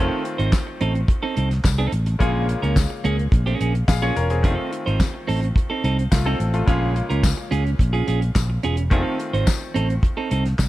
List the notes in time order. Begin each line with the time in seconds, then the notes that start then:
Already playing: D#3 A3 C4 D#4 A4
0.00 C4 F4
0.24 muted clean electric guitar stroke, closed hi-hat
0.38 G#1 C4 D#4 C5, closed hi-hat
0.52 kick, snare, clap, tambourine
0.67 muted clean electric guitar stroke
0.81 A1 C4 D#4 A4, closed hi-hat
0.95 muted clean electric guitar stroke, closed hi-hat
1.08 muted clean electric guitar stroke, kick, closed hi-hat
1.23 C4 D#4 A4
1.36 C2 C4 D#4 A4, closed hi-hat
1.50 muted clean electric guitar stroke, snare, closed hi-hat
1.64 C2, muted clean electric guitar stroke, kick, snare, clap, tambourine
1.78 C4 D#4 A4, closed hi-hat
1.92 A1, muted clean electric guitar stroke, closed hi-hat
2.06 muted clean electric guitar stroke, closed hi-hat
2.19 A#1 C#3 G#3 A#3 C#4 F4 G#4, kick, closed hi-hat
2.49 muted clean electric guitar stroke, closed hi-hat
2.62 C#2 A#3 C#4 A#4, closed hi-hat
2.76 kick, snare, clap, tambourine
2.90 muted clean electric guitar stroke
3.04 C#2 A#3 C#4 G#4, closed hi-hat
3.18 muted clean electric guitar stroke, closed hi-hat
3.32 A#1, muted clean electric guitar stroke, kick, closed hi-hat
3.46 A#3 C#4 G#4, closed hi-hat
3.60 A#1 A#3 C#4 G#4, closed hi-hat
3.74 muted clean electric guitar stroke, closed hi-hat
3.88 A#1 G#4 F5, muted clean electric guitar stroke, kick, snare, clap, tambourine
4.02 A#3 C#4 F4 G#4 C#5
4.16 E1 C#4 A#4, closed hi-hat
4.30 C4 G#4, muted clean electric guitar stroke, closed hi-hat
4.43 F1 D#3 A3 B3 C4 D4 F4 G#4, kick, closed hi-hat
4.55 C4 D#4 A4
4.72 muted clean electric guitar stroke, closed hi-hat
4.86 G#1 C4 D#4 C5, closed hi-hat
5.00 kick, snare, clap, tambourine
5.14 muted clean electric guitar stroke
5.27 A1 C4 D#4 A4, open hi-hat
5.41 muted clean electric guitar stroke, closed hi-hat
5.56 muted clean electric guitar stroke, kick, closed hi-hat
5.70 C4 D#4 A4
5.84 C2 C4 D#4 A4, closed hi-hat
5.98 muted clean electric guitar stroke, closed hi-hat
6.11 C2 A3 F4, muted clean electric guitar stroke, kick, snare, clap, tambourine
6.25 C4 D#4 A4
6.40 A1, muted clean electric guitar stroke, closed hi-hat
6.54 A3 F4, muted clean electric guitar stroke, closed hi-hat
6.66 A#1 C#3 G#3 A#3 C#4 F4 G#4, kick, closed hi-hat
6.96 muted clean electric guitar stroke, closed hi-hat
7.10 C#2 C#4 F4 A#4, closed hi-hat
7.23 kick, snare, clap, tambourine
7.37 muted clean electric guitar stroke
7.51 C#2 C#4 F4 G#4, closed hi-hat
7.65 muted clean electric guitar stroke, closed hi-hat
7.79 A#1, muted clean electric guitar stroke, kick, closed hi-hat
7.93 C#4 F4 G#4, closed hi-hat
8.07 A#1 C#4 F4 G#4, closed hi-hat
8.21 muted clean electric guitar stroke, closed hi-hat
8.35 A#1, muted clean electric guitar stroke, kick, snare, clap, tambourine
8.50 muted clean electric guitar stroke
8.63 E1 C#4 F4 G#4, closed hi-hat
8.77 muted clean electric guitar stroke, closed hi-hat
8.90 F1 D#3 A3 B3 C4 D4 F4 G#4, kick, closed hi-hat
9.02 C4 D#4 A4
9.19 muted clean electric guitar stroke, closed hi-hat
9.33 G#1 C4 D#4 C5, closed hi-hat
9.47 kick, snare, clap, tambourine
9.61 muted clean electric guitar stroke
9.74 A1 C4 D#4 A4, closed hi-hat
9.89 muted clean electric guitar stroke, closed hi-hat
10.03 muted clean electric guitar stroke, kick, closed hi-hat
10.17 C4 D#4 A4
10.30 C2 C4 D#4 A4, closed hi-hat
10.45 muted clean electric guitar stroke, snare, closed hi-hat
10.58 C2, muted clean electric guitar stroke, kick, snare, clap, tambourine